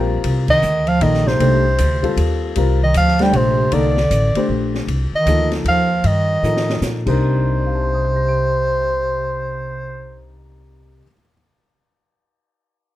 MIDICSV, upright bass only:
0, 0, Header, 1, 3, 480
1, 0, Start_track
1, 0, Tempo, 387097
1, 303, Time_signature, 3, 2, 24, 8
1, 16069, End_track
2, 0, Start_track
2, 0, Title_t, "Upright bass"
2, 0, Program_c, 0, 32
2, 0, Note_on_c, 0, 34, 89
2, 288, Note_off_c, 0, 34, 0
2, 295, Note_on_c, 0, 36, 79
2, 764, Note_off_c, 0, 36, 0
2, 779, Note_on_c, 0, 38, 82
2, 1245, Note_off_c, 0, 38, 0
2, 1255, Note_on_c, 0, 34, 98
2, 1723, Note_off_c, 0, 34, 0
2, 1735, Note_on_c, 0, 36, 75
2, 2202, Note_off_c, 0, 36, 0
2, 2226, Note_on_c, 0, 38, 81
2, 2678, Note_off_c, 0, 38, 0
2, 2685, Note_on_c, 0, 39, 87
2, 3157, Note_off_c, 0, 39, 0
2, 3178, Note_on_c, 0, 36, 76
2, 3643, Note_off_c, 0, 36, 0
2, 3662, Note_on_c, 0, 38, 79
2, 4121, Note_off_c, 0, 38, 0
2, 4129, Note_on_c, 0, 34, 95
2, 4598, Note_off_c, 0, 34, 0
2, 4612, Note_on_c, 0, 36, 72
2, 5080, Note_off_c, 0, 36, 0
2, 5089, Note_on_c, 0, 33, 83
2, 5376, Note_off_c, 0, 33, 0
2, 5563, Note_on_c, 0, 34, 79
2, 6035, Note_off_c, 0, 34, 0
2, 6041, Note_on_c, 0, 36, 72
2, 6332, Note_off_c, 0, 36, 0
2, 6521, Note_on_c, 0, 38, 75
2, 6994, Note_off_c, 0, 38, 0
2, 7001, Note_on_c, 0, 39, 88
2, 7474, Note_off_c, 0, 39, 0
2, 7487, Note_on_c, 0, 43, 70
2, 7957, Note_off_c, 0, 43, 0
2, 7971, Note_on_c, 0, 45, 73
2, 8440, Note_off_c, 0, 45, 0
2, 8447, Note_on_c, 0, 46, 75
2, 8747, Note_off_c, 0, 46, 0
2, 8761, Note_on_c, 0, 36, 86
2, 13629, Note_off_c, 0, 36, 0
2, 16069, End_track
3, 0, Start_track
3, 0, Title_t, "Muted upright bass strokes"
3, 5397, Note_on_c, 9, 29, 39
3, 5521, Note_off_c, 9, 29, 0
3, 6348, Note_on_c, 9, 29, 37
3, 6472, Note_off_c, 9, 29, 0
3, 16069, End_track
0, 0, End_of_file